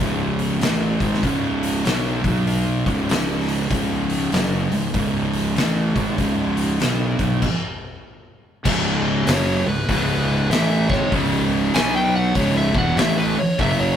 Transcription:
0.00 fingered electric bass C#1, distorted electric guitar C#2 G#2 C#3
0.39 open hi-hat
0.61 fingered electric bass A1, distorted electric guitar A2 E3 A3, snare, open hi-hat
1.00 fingered electric bass G#1, distorted electric guitar G#2 D#3 G#3, kick, open hi-hat
1.14 snare
1.23 fingered electric bass C#1, distorted electric guitar C#2 G#2 C#3, kick, open hi-hat
1.63 open hi-hat
1.85 fingered electric bass B1, distorted electric guitar B2 F#3 B3, snare, open hi-hat
2.23 fingered electric bass B1, distorted electric guitar B2 F#3 B3, kick, open hi-hat
2.47 open hi-hat
2.85 fingered electric bass C#1, distorted electric guitar C#2 G#2 C#3, kick, open hi-hat
3.09 snare, open hi-hat
3.49 open hi-hat
3.71 fingered electric bass C#1, distorted electric guitar C#2 G#2 C#3, kick, open hi-hat
4.10 open hi-hat
4.32 fingered electric bass F#1, distorted electric guitar F#2 C#3 F#3, snare, open hi-hat
4.71 fingered electric bass C#1, distorted electric guitar C#2 G#2, open hi-hat
4.94 fingered electric bass C#1, distorted electric guitar C#2 G#2 C#3, kick, open hi-hat
5.33 open hi-hat
5.56 fingered electric bass A1, distorted electric guitar A2 E3 A3, snare, open hi-hat
5.95 fingered electric bass G#1, distorted electric guitar G#2 D#3 G#3, kick, open hi-hat
6.18 fingered electric bass C#1, distorted electric guitar C#2 G#2 C#3, kick, open hi-hat
6.57 open hi-hat
6.80 fingered electric bass B1, distorted electric guitar B2 F#3 B3, snare, open hi-hat
7.18 fingered electric bass B1, distorted electric guitar B2 F#3 B3, kick, open hi-hat
7.42 kick, crash
8.65 fingered electric bass C#1, distorted electric guitar C#2 G#2 C#3, kick, crash
9.27 fingered electric bass F#1, distorted electric guitar F#2 C#3 F#3, lead electric guitar C#5, snare, open hi-hat
9.66 fingered electric bass C#1, distorted electric guitar C#2 G#2, lead electric guitar B4
9.89 fingered electric bass C#1, distorted electric guitar C#2 G#2 C#3, kick, open hi-hat
10.50 fingered electric bass A1, distorted electric guitar A2 E3 A3, lead electric guitar E5, snare, open hi-hat
10.89 fingered electric bass G#1, distorted electric guitar G#2 D#3 G#3, lead electric guitar C#5, kick, snare
11.12 fingered electric bass C#1, distorted electric guitar C#2 G#2 C#3, kick, open hi-hat
11.74 fingered electric bass B1, distorted electric guitar B2 F#3 B3, lead electric guitar G#5, snare, open hi-hat
11.96 lead electric guitar G5
12.15 lead electric guitar F#5
12.35 fingered electric bass C#1, distorted electric guitar C#2 G#2 C#3, lead electric guitar C#5, kick, open hi-hat
12.57 lead electric guitar E5
12.74 fingered electric bass E1, distorted electric guitar E2 B2 E3, lead electric guitar F#5, kick
12.97 fingered electric bass A1, distorted electric guitar A2 E3 A3, lead electric guitar E5, snare, open hi-hat
13.18 lead electric guitar B4
13.37 lead electric guitar C#5, muted distorted electric guitar stroke, muted fingered electric bass stroke
13.59 fingered electric bass F#1, distorted electric guitar F#2 C#3 F#3, lead electric guitar E5, kick, open hi-hat
13.81 lead electric guitar C#5

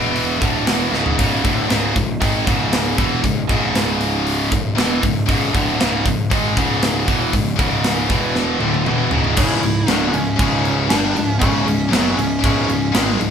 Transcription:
Already playing: picked electric bass E1, distorted electric guitar E2 B2 E3
0.16 open hi-hat
0.38 picked electric bass D1, distorted electric guitar D2 A2 D3, kick
0.42 open hi-hat
0.66 picked electric bass E1, distorted electric guitar E2 B2 E3, snare, open hi-hat
0.90 picked electric bass C#1, distorted electric guitar C#2 G#2 C#3, snare
1.06 floor tom
1.17 picked electric bass C#1, distorted electric guitar C#2 G#2 C#3, kick, open hi-hat
1.43 picked electric bass D1, distorted electric guitar D2 A2 D3, kick, open hi-hat
1.66 picked electric bass C#1, distorted electric guitar C#2 G#2 C#3, open hi-hat
1.70 snare
1.94 picked electric bass C#1, distorted electric guitar C#2 G#2, kick, open hi-hat
2.20 picked electric bass G#1, distorted electric guitar G#2 D#3 G#3, kick, open hi-hat
2.45 picked electric bass C#1, distorted electric guitar C#2 G#2 C#3, kick, open hi-hat
2.73 snare, open hi-hat
2.97 picked electric bass E1, distorted electric guitar E2 B2 E3, kick, open hi-hat
3.24 picked electric bass C#1, distorted electric guitar C#2 G#2, kick, open hi-hat
3.49 picked electric bass C#1, distorted electric guitar C#2 G#2 C#3, kick, open hi-hat
3.75 snare, open hi-hat
4.01 open hi-hat
4.27 open hi-hat
4.52 picked electric bass C#1, distorted electric guitar C#2 G#2, kick, open hi-hat
4.75 picked electric bass E1, distorted electric guitar E2 B2 E3, snare, open hi-hat
5.01 picked electric bass C#1, distorted electric guitar C#2 G#2, kick, open hi-hat
5.26 picked electric bass C#1, distorted electric guitar C#2 G#2 C#3, kick, open hi-hat
5.52 picked electric bass D1, distorted electric guitar D2 A2 D3, kick, open hi-hat
5.79 picked electric bass C#1, distorted electric guitar C#2 G#2 C#3, snare, open hi-hat
6.04 picked electric bass C#1, distorted electric guitar C#2 G#2, kick, open hi-hat
6.30 picked electric bass G#1, distorted electric guitar G#2 D#3 G#3, kick, open hi-hat
6.56 picked electric bass C#1, distorted electric guitar C#2 G#2 C#3, kick, open hi-hat
6.83 snare, open hi-hat
7.06 picked electric bass E1, distorted electric guitar E2 B2 E3, kick, open hi-hat
7.32 picked electric bass C#1, distorted electric guitar C#2 G#2, kick, open hi-hat
7.56 picked electric bass C#1, distorted electric guitar C#2 G#2 C#3, kick, open hi-hat
7.84 snare, open hi-hat
8.07 picked electric bass E1, distorted electric guitar E2 B2 E3, kick, open hi-hat
8.36 snare
8.59 picked electric bass D1, distorted electric guitar D2 A2 D3, high tom
8.74 high tom
8.84 picked electric bass E1, distorted electric guitar E2 B2 E3, mid tom
9.10 picked electric bass C#1, distorted electric guitar C#2 G#2 C#3, floor tom
9.24 floor tom
9.34 picked electric bass C#1, distorted electric guitar C#2 G#2 C#3, kick, crash
9.38 lead electric guitar E4
9.62 picked electric bass C#1, distorted electric guitar C#2 G#2, crash
9.87 picked electric bass D1, distorted electric guitar D2 A2 D3, lead electric guitar D4, snare, crash
10.08 lead electric guitar B3
10.12 picked electric bass C#1, distorted electric guitar C#2 G#2, lead electric guitar C#4, crash
10.36 picked electric bass C#1, distorted electric guitar C#2 G#2 C#3, kick, crash
10.65 crash
10.89 picked electric bass G1, distorted electric guitar G2 D3 G3, lead electric guitar D4, snare, crash
11.14 picked electric bass C#1, distorted electric guitar C#2 G#2, crash
11.39 picked electric bass C#1, distorted electric guitar C#2 G#2 C#3, lead electric guitar C#4, kick, crash
11.64 picked electric bass C#1, distorted electric guitar C#2 G#2, crash
11.89 distorted electric guitar F#2 C#3 F#3, lead electric guitar B3
11.93 picked electric bass F#1, snare, crash
12.11 distorted electric guitar C#2 G#2, lead electric guitar B3
12.17 picked electric bass C#1, overdriven electric guitar C#2, lead electric guitar C#4, crash
12.39 distorted electric guitar C#2 G#2 C#3
12.44 picked electric bass C#1, overdriven electric guitar C#2 C#3, kick, crash
12.67 picked electric bass C#1, distorted electric guitar C#2 G#2, crash
12.92 picked electric bass G#1, distorted electric guitar G#2 D#3 G#3, snare, crash
13.18 picked electric bass C#1, distorted electric guitar C#2 G#2, crash

